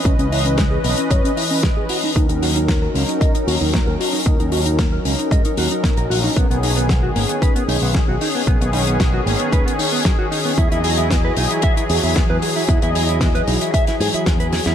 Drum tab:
HH |xxoxx-oxxxo-x-o-|xxoxx-oxxxo-x-o-|xxoxx-oxxxoxxxo-|xxoxx-oxxxo-x-o-|
SD |----o-------o---|----o-------o---|----o-------o---|----o-------o---|
BD |o---o---o---o---|o---o---o---o---|o---o---o---o---|o---o---o---o---|

HH |xxoxx-oxxxo-x-o-|xxoxx-oxxxo-x-o-|xxoxxxoxxxoxxxox|
SD |----o-------o---|----o-------o---|----o----o--o-oo|
BD |o---o---o---o---|o---o---o---o---|o---o---o---o---|